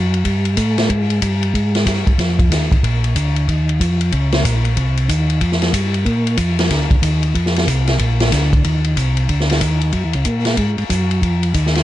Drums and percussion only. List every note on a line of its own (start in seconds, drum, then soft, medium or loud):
0.14 ride soft
0.25 kick soft
0.25 ride medium
0.45 ride medium
0.57 kick soft
0.57 hi-hat pedal medium
0.57 ride medium
0.78 snare medium
0.78 ride soft
0.90 kick soft
0.90 ride medium
1.10 ride soft
1.22 kick soft
1.22 hi-hat pedal medium
1.22 ride medium
1.43 ride soft
1.55 kick soft
1.55 ride medium
1.75 snare soft
1.75 ride soft
1.87 kick soft
1.87 snare soft
1.87 hi-hat pedal medium
1.87 ride medium
2.07 kick medium
2.07 ride soft
2.19 kick soft
2.19 snare soft
2.19 ride medium
2.39 kick medium
2.39 ride medium
2.51 kick soft
2.51 snare soft
2.51 hi-hat pedal medium
2.51 ride medium
2.72 kick medium
2.72 ride medium
2.84 kick soft
2.84 ride medium
3.04 ride medium
3.16 kick soft
3.16 hi-hat pedal medium
3.16 ride medium
3.36 ride soft
3.48 kick soft
3.48 ride medium
3.69 ride medium
3.81 kick soft
3.81 hi-hat pedal medium
3.81 ride medium
4.01 ride medium
4.12 kick soft
4.12 ride medium
4.32 snare medium
4.32 ride medium
4.45 kick soft
4.45 hi-hat pedal medium
4.45 ride medium
4.65 ride soft
4.77 kick soft
4.77 ride medium
4.97 ride medium
5.09 kick soft
5.09 hi-hat pedal medium
5.09 ride medium
5.30 ride medium
5.41 kick soft
5.41 ride medium
5.52 snare soft
5.62 snare soft
5.62 ride medium
5.74 kick soft
5.74 hi-hat pedal medium
5.74 ride medium
5.94 ride soft
6.06 kick soft
6.06 ride medium
6.27 ride medium
6.37 kick soft
6.37 hi-hat pedal medium
6.37 ride medium
6.59 snare medium
6.59 ride medium
6.70 kick soft
6.70 snare soft
6.70 ride medium
6.91 kick medium
6.91 ride medium
7.03 kick soft
7.03 hi-hat pedal medium
7.03 ride medium
7.23 ride medium
7.35 kick soft
7.35 ride medium
7.46 snare soft
7.56 snare medium
7.56 ride medium
7.68 kick soft
7.68 hi-hat pedal medium
7.68 ride medium
7.88 snare soft
7.88 ride medium
8.00 kick soft
8.00 ride medium
8.20 snare medium
8.20 ride medium
8.32 kick soft
8.32 snare soft
8.32 hi-hat pedal medium
8.32 ride medium
8.53 kick medium
8.53 ride soft
8.64 kick soft
8.64 ride medium
8.84 ride soft
8.97 kick soft
8.97 hi-hat pedal medium
8.97 ride medium
9.17 ride soft
9.29 kick soft
9.29 ride medium
9.40 snare soft
9.49 snare soft
9.49 ride medium
9.61 kick soft
9.61 hi-hat pedal medium
9.61 ride medium
9.81 ride soft
9.92 kick soft
9.92 ride medium
10.13 ride medium
10.25 kick soft
10.25 hi-hat pedal medium
10.25 ride medium
10.45 snare soft
10.45 ride medium
10.57 kick soft
10.57 ride medium
10.78 ride medium
10.90 kick soft
10.90 hi-hat pedal medium
10.90 ride medium
11.11 ride soft
11.22 kick soft
11.22 ride medium
11.43 ride medium
11.54 kick soft
11.54 hi-hat pedal medium
11.54 ride medium
11.66 snare soft
11.75 snare soft
11.75 ride soft